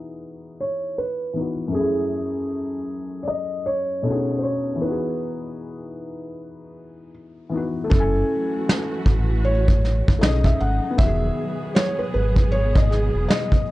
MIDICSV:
0, 0, Header, 1, 6, 480
1, 0, Start_track
1, 0, Tempo, 769231
1, 1096, Time_signature, 4, 2, 24, 8
1, 8556, End_track
2, 0, Start_track
2, 0, Title_t, "Felt piano"
2, 0, Program_c, 0, 0
2, 377, Note_on_c, 0, 73, 84
2, 613, Note_on_c, 0, 71, 78
2, 624, Note_off_c, 0, 73, 0
2, 1089, Note_on_c, 0, 68, 96
2, 1109, Note_off_c, 0, 71, 0
2, 2015, Note_on_c, 0, 74, 72
2, 2045, Note_on_c, 0, 75, 95
2, 2046, Note_off_c, 0, 68, 0
2, 2053, Note_off_c, 0, 74, 0
2, 2284, Note_on_c, 0, 73, 106
2, 2298, Note_off_c, 0, 75, 0
2, 2710, Note_off_c, 0, 73, 0
2, 2737, Note_on_c, 0, 72, 65
2, 2766, Note_on_c, 0, 73, 87
2, 2774, Note_off_c, 0, 72, 0
2, 2994, Note_off_c, 0, 73, 0
2, 3005, Note_on_c, 0, 71, 80
2, 4425, Note_off_c, 0, 71, 0
2, 4929, Note_on_c, 0, 69, 103
2, 5894, Note_on_c, 0, 73, 99
2, 5922, Note_off_c, 0, 69, 0
2, 6373, Note_on_c, 0, 75, 102
2, 6390, Note_off_c, 0, 73, 0
2, 6519, Note_on_c, 0, 76, 103
2, 6524, Note_off_c, 0, 75, 0
2, 6617, Note_on_c, 0, 78, 100
2, 6618, Note_off_c, 0, 76, 0
2, 6840, Note_off_c, 0, 78, 0
2, 6853, Note_on_c, 0, 76, 116
2, 7332, Note_on_c, 0, 73, 97
2, 7349, Note_off_c, 0, 76, 0
2, 7480, Note_on_c, 0, 71, 86
2, 7483, Note_off_c, 0, 73, 0
2, 7511, Note_off_c, 0, 71, 0
2, 7575, Note_on_c, 0, 71, 90
2, 7810, Note_on_c, 0, 73, 107
2, 7823, Note_off_c, 0, 71, 0
2, 7958, Note_on_c, 0, 75, 94
2, 7962, Note_off_c, 0, 73, 0
2, 8053, Note_on_c, 0, 68, 86
2, 8058, Note_off_c, 0, 75, 0
2, 8290, Note_on_c, 0, 75, 97
2, 8302, Note_off_c, 0, 68, 0
2, 8556, Note_off_c, 0, 75, 0
2, 8556, End_track
3, 0, Start_track
3, 0, Title_t, "Upright piano"
3, 0, Program_c, 1, 0
3, 0, Control_c, 1, 64, 127
3, 0, Note_on_c, 1, 52, 55
3, 0, Note_on_c, 1, 59, 50
3, 0, Note_on_c, 1, 63, 52
3, 0, Note_on_c, 1, 66, 51
3, 0, Note_on_c, 1, 68, 61
3, 806, Note_off_c, 1, 52, 0
3, 818, Note_off_c, 1, 59, 0
3, 831, Note_off_c, 1, 63, 0
3, 833, Note_on_c, 1, 52, 40
3, 844, Note_off_c, 1, 66, 0
3, 844, Note_on_c, 1, 59, 40
3, 855, Note_on_c, 1, 63, 38
3, 856, Note_off_c, 1, 68, 0
3, 871, Note_on_c, 1, 66, 36
3, 880, Note_on_c, 1, 71, 45
3, 1046, Note_on_c, 1, 42, 57
3, 1073, Note_on_c, 1, 57, 50
3, 1084, Note_off_c, 1, 52, 0
3, 1090, Note_off_c, 1, 59, 0
3, 1096, Note_off_c, 1, 63, 0
3, 1096, Note_on_c, 1, 61, 53
3, 1103, Note_off_c, 1, 66, 0
3, 1103, Control_c, 1, 64, 0
3, 1108, Note_off_c, 1, 71, 0
3, 1121, Note_on_c, 1, 64, 57
3, 1146, Note_on_c, 1, 68, 57
3, 1207, Control_c, 1, 64, 127
3, 2486, Note_off_c, 1, 42, 0
3, 2499, Note_off_c, 1, 57, 0
3, 2511, Note_off_c, 1, 61, 0
3, 2512, Note_on_c, 1, 47, 53
3, 2520, Note_on_c, 1, 57, 55
3, 2524, Note_off_c, 1, 64, 0
3, 2531, Note_on_c, 1, 61, 52
3, 2536, Note_off_c, 1, 68, 0
3, 2542, Note_on_c, 1, 62, 42
3, 2544, Control_c, 1, 64, 0
3, 2552, Note_on_c, 1, 66, 55
3, 2561, Note_on_c, 1, 68, 62
3, 2583, Note_on_c, 1, 63, 48
3, 2588, Note_off_c, 1, 62, 0
3, 2637, Control_c, 1, 64, 127
3, 2968, Note_on_c, 1, 52, 55
3, 2994, Note_on_c, 1, 59, 52
3, 3004, Note_off_c, 1, 47, 0
3, 3007, Note_off_c, 1, 63, 0
3, 3008, Note_off_c, 1, 57, 0
3, 3014, Note_off_c, 1, 61, 0
3, 3016, Note_on_c, 1, 63, 52
3, 3023, Control_c, 1, 64, 0
3, 3024, Note_off_c, 1, 66, 0
3, 3028, Note_off_c, 1, 68, 0
3, 3044, Note_on_c, 1, 66, 53
3, 3066, Note_on_c, 1, 68, 57
3, 3134, Control_c, 1, 64, 127
3, 4647, Note_off_c, 1, 52, 0
3, 4660, Note_off_c, 1, 59, 0
3, 4671, Note_off_c, 1, 63, 0
3, 4676, Note_on_c, 1, 52, 52
3, 4685, Note_off_c, 1, 66, 0
3, 4690, Note_on_c, 1, 59, 46
3, 4696, Note_off_c, 1, 68, 0
3, 4703, Note_on_c, 1, 63, 43
3, 4715, Note_on_c, 1, 66, 47
3, 4726, Note_on_c, 1, 71, 55
3, 4893, Note_on_c, 1, 57, 64
3, 4925, Note_on_c, 1, 61, 59
3, 4926, Note_off_c, 1, 52, 0
3, 4933, Note_off_c, 1, 59, 0
3, 4940, Note_off_c, 1, 63, 0
3, 4945, Control_c, 1, 64, 0
3, 4946, Note_off_c, 1, 66, 0
3, 4951, Note_off_c, 1, 71, 0
3, 4960, Note_on_c, 1, 64, 60
3, 4992, Note_on_c, 1, 80, 70
3, 5058, Control_c, 1, 64, 127
3, 6329, Note_off_c, 1, 57, 0
3, 6346, Note_off_c, 1, 61, 0
3, 6356, Note_on_c, 1, 57, 62
3, 6363, Note_off_c, 1, 64, 0
3, 6372, Note_on_c, 1, 61, 57
3, 6379, Note_off_c, 1, 80, 0
3, 6385, Control_c, 1, 64, 0
3, 6388, Note_on_c, 1, 63, 57
3, 6406, Note_on_c, 1, 68, 66
3, 6490, Control_c, 1, 64, 127
3, 6805, Note_on_c, 1, 59, 65
3, 6839, Note_on_c, 1, 51, 58
3, 6846, Note_off_c, 1, 57, 0
3, 6854, Note_off_c, 1, 61, 0
3, 6862, Note_off_c, 1, 63, 0
3, 6864, Control_c, 1, 64, 0
3, 6871, Note_off_c, 1, 68, 0
3, 6872, Note_on_c, 1, 66, 59
3, 6907, Note_on_c, 1, 68, 73
3, 6958, Control_c, 1, 64, 127
3, 8556, Note_off_c, 1, 51, 0
3, 8556, Note_off_c, 1, 59, 0
3, 8556, Note_off_c, 1, 66, 0
3, 8556, Note_off_c, 1, 68, 0
3, 8556, End_track
4, 0, Start_track
4, 0, Title_t, "String section"
4, 0, Program_c, 2, 48
4, 4944, Note_on_c, 2, 54, 72
4, 4945, Note_on_c, 2, 57, 74
4, 4946, Note_on_c, 2, 66, 89
4, 4948, Note_on_c, 2, 52, 75
4, 6366, Note_off_c, 2, 57, 0
4, 6366, Note_off_c, 2, 66, 0
4, 6367, Note_off_c, 2, 52, 0
4, 6380, Note_on_c, 2, 49, 66
4, 6381, Note_on_c, 2, 57, 63
4, 6382, Note_on_c, 2, 63, 77
4, 6853, Note_off_c, 2, 49, 0
4, 6853, Note_off_c, 2, 57, 0
4, 6854, Note_off_c, 2, 63, 0
4, 6859, Note_on_c, 2, 47, 81
4, 6860, Note_on_c, 2, 59, 70
4, 6861, Note_on_c, 2, 68, 82
4, 8556, Note_off_c, 2, 47, 0
4, 8556, Note_off_c, 2, 54, 0
4, 8556, Note_off_c, 2, 59, 0
4, 8556, Note_off_c, 2, 68, 0
4, 8556, End_track
5, 0, Start_track
5, 0, Title_t, "Sub bass"
5, 0, Program_c, 3, 38
5, 4941, Note_on_c, 3, 30, 112
5, 5139, Note_off_c, 3, 30, 0
5, 5655, Note_on_c, 3, 33, 85
5, 6255, Note_off_c, 3, 33, 0
5, 6294, Note_on_c, 3, 32, 85
5, 6368, Note_off_c, 3, 32, 0
5, 6380, Note_on_c, 3, 35, 89
5, 6578, Note_off_c, 3, 35, 0
5, 6620, Note_on_c, 3, 32, 102
5, 6739, Note_off_c, 3, 32, 0
5, 6858, Note_on_c, 3, 28, 106
5, 7057, Note_off_c, 3, 28, 0
5, 7580, Note_on_c, 3, 32, 85
5, 8178, Note_off_c, 3, 32, 0
5, 8203, Note_on_c, 3, 28, 82
5, 8281, Note_off_c, 3, 28, 0
5, 8556, End_track
6, 0, Start_track
6, 0, Title_t, "Drums"
6, 4939, Note_on_c, 9, 36, 114
6, 5001, Note_off_c, 9, 36, 0
6, 5424, Note_on_c, 9, 38, 119
6, 5486, Note_off_c, 9, 38, 0
6, 5653, Note_on_c, 9, 36, 94
6, 5715, Note_off_c, 9, 36, 0
6, 6042, Note_on_c, 9, 36, 102
6, 6104, Note_off_c, 9, 36, 0
6, 6145, Note_on_c, 9, 38, 39
6, 6207, Note_off_c, 9, 38, 0
6, 6291, Note_on_c, 9, 36, 105
6, 6354, Note_off_c, 9, 36, 0
6, 6383, Note_on_c, 9, 38, 108
6, 6445, Note_off_c, 9, 38, 0
6, 6517, Note_on_c, 9, 36, 85
6, 6579, Note_off_c, 9, 36, 0
6, 6856, Note_on_c, 9, 36, 116
6, 6919, Note_off_c, 9, 36, 0
6, 7340, Note_on_c, 9, 38, 119
6, 7403, Note_off_c, 9, 38, 0
6, 7715, Note_on_c, 9, 36, 90
6, 7778, Note_off_c, 9, 36, 0
6, 7959, Note_on_c, 9, 36, 101
6, 8022, Note_off_c, 9, 36, 0
6, 8064, Note_on_c, 9, 38, 39
6, 8126, Note_off_c, 9, 38, 0
6, 8302, Note_on_c, 9, 38, 104
6, 8364, Note_off_c, 9, 38, 0
6, 8436, Note_on_c, 9, 36, 74
6, 8498, Note_off_c, 9, 36, 0
6, 8556, End_track
0, 0, End_of_file